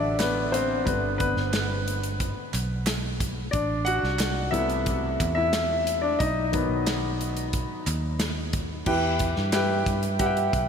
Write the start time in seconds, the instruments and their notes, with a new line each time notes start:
Already playing: fingered electric bass A1, grand piano D3 F#3 A3 D4 E4 F#4 D5 E5 F#5
0.19 grand piano B3 B4, snare, clap, closed hi-hat
0.52 grand piano C4 C5, closed hi-hat
0.85 fingered electric bass G1, grand piano D3 G3 B3 B4, kick, closed hi-hat
1.18 grand piano B3 B4, kick, closed hi-hat
1.37 fingered electric bass G1, snare
1.53 snare, clap, closed hi-hat
1.88 closed hi-hat
2.04 closed hi-hat
2.20 kick, closed hi-hat
2.54 fingered electric bass B1, clap, closed hi-hat
2.86 snare, clap, closed hi-hat
3.20 kick, closed hi-hat
3.51 fingered electric bass A1, grand piano D4 D5, kick, closed hi-hat
3.85 grand piano F#4 F#5, closed hi-hat
4.03 fingered electric bass C2, snare
4.19 snare, clap, closed hi-hat
4.51 fingered electric bass C2, grand piano C3 A3 B3 E4 E5, closed hi-hat
4.70 closed hi-hat
4.86 kick, closed hi-hat
5.20 fingered electric bass E2, kick, clap, closed hi-hat
5.35 grand piano E4 E5
5.53 snare, clap, closed hi-hat
5.87 closed hi-hat
6.02 grand piano D4 D5
6.19 fingered electric bass B1, grand piano D#4 D#5, kick, closed hi-hat
6.52 grand piano D#3 F#3 B3, kick, closed hi-hat
6.69 fingered electric bass B1
6.87 snare, clap, closed hi-hat
7.21 closed hi-hat
7.37 closed hi-hat
7.53 kick, closed hi-hat
7.87 fingered electric bass D#2, clap, closed hi-hat
8.20 snare, clap, closed hi-hat
8.53 kick, closed hi-hat
8.86 fingered electric bass E2, grand piano E3 G4 B4 E5 G5, kick, crash
9.19 kick, closed hi-hat
9.36 fingered electric bass G2, snare
9.52 grand piano G4 B4 E5 G5, snare, clap, closed hi-hat
9.86 fingered electric bass G2, kick, closed hi-hat
10.03 closed hi-hat
10.19 grand piano G4 B4 E5 F#5, kick, closed hi-hat
10.26 grand piano G5
10.37 closed hi-hat
10.53 fingered electric bass B1, kick, closed hi-hat